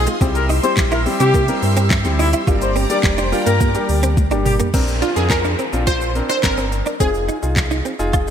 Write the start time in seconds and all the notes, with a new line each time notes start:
Already playing: G#3 C4 D#4 F4 G#4 F5 C6 D#6
0.07 G#3, closed hi-hat, shaker
0.21 C2 G3 C4 E4 G4 E5 E6, kick, shaker
0.35 A#4, muted clean electric guitar stroke, closed hi-hat, shaker
0.49 D#4, open hi-hat, shaker
0.63 G3 C4 E4 G4 C5, closed hi-hat, shaker
0.77 A#1, kick, snare, clap, shaker
0.92 E4 A#4, closed hi-hat, shaker
1.06 G3 C4 E4 G4, muted clean electric guitar stroke, open hi-hat, shaker
1.20 C3 C4 G4, closed hi-hat, shaker
1.34 A#3, kick, shaker
1.48 G3 C4 E4 A#4, closed hi-hat, shaker
1.62 G2, muted clean electric guitar stroke, open hi-hat, shaker
1.76 C4, closed hi-hat, shaker
1.90 muted clean electric guitar stroke, kick, snare, clap, shaker
2.05 D2 G3 C4 E4 G4, closed hi-hat, shaker
2.19 D#4 E4, open hi-hat, shaker
2.33 E4, closed hi-hat, shaker
2.47 G1 G3 A#3 D4 F4 G4 D5 A#5 D6, kick, shaker
2.62 C5, muted clean electric guitar stroke, closed hi-hat, shaker
2.76 C4, open hi-hat, shaker
2.90 G3 A#3 D4 G4 D5, closed hi-hat, shaker
3.03 F1, kick, snare, clap, shaker
3.18 D4 C5, closed hi-hat, shaker
3.32 G3 A#3 D4 F4, muted clean electric guitar stroke, open hi-hat, shaker
3.46 G2 A#3 A#4, closed hi-hat, shaker
3.60 A#3, kick, shaker
3.75 G3 A#3 D4 G4, muted clean electric guitar stroke, closed hi-hat, shaker
3.89 D2, open hi-hat, shaker
4.03 C4, closed hi-hat, shaker
4.17 kick, high tom, shaker
4.31 G1 G3 A#3 D4 G4, closed hi-hat, shaker
4.45 G4, muted clean electric guitar stroke, mid tom, open hi-hat, shaker
4.60 A#3, closed hi-hat, floor tom, shaker
4.74 A#1 C4 D4 A#4, kick, closed hi-hat, crash, downlifter, shaker
4.88 shaker
5.02 D4 F4, closed hi-hat, shaker
5.16 F2 C4 D4 G#4 A#4, muted clean electric guitar stroke, shaker
5.30 A#4, muted clean electric guitar stroke, kick, snare, clap, closed hi-hat, shaker
5.44 D4, shaker
5.59 C4, closed hi-hat, shaker
5.73 A#1 C4 D4 F4, shaker
5.87 F4 C5, kick, closed hi-hat, shaker
6.01 muted clean electric guitar stroke, shaker
6.15 C4 D4 A#4, closed hi-hat, shaker
6.29 D4 C5, shaker
6.43 G1 C4 D4 A#4, kick, snare, clap, closed hi-hat, shaker
6.58 C4, shaker
6.72 muted clean electric guitar stroke, closed hi-hat, shaker
6.86 D4, shaker
7.00 F1 C4 D#4 F4 G#4, kick, closed hi-hat, shaker
7.14 shaker
7.29 D#4, closed hi-hat, shaker
7.42 C2 D#4 F4 G#4, muted clean electric guitar stroke, shaker
7.56 muted clean electric guitar stroke, kick, snare, clap, closed hi-hat, shaker
7.71 D#4, shaker
7.85 C4, closed hi-hat, shaker
7.99 F1 D#4 F4 G#4, shaker
8.13 F4, kick, closed hi-hat, shaker